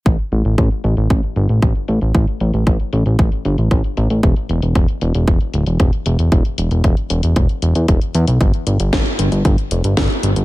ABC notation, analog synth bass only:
X:1
M:4/4
L:1/16
Q:1/4=115
K:Ephr
V:1 name="Analog synth bass" clef=bass
A,,, z A,,, A,,, A,,, z A,,, A,,, A,,, z G,,, A,,, A,,, z A,,, A,,, | A,,, z A,,, A,,, A,,, z A,,, A,,, A,,, z G,,, A,,, A,,, z A,,, A,,, | E,,, z E,,, E,,, E,,, z E,,, E,,, E,,, z D,,, E,,, E,,, z E,,, E,,, | E,,, z E,,, E,,, E,,, z E,,, E,,, E,,, z E,,, E,, E,,, z E,, B,,, |
G,,, z G,,, G,,, G,,, z G,,, G,,, G,,, z F,,, G,,, G,,, z G,,, G,,, |]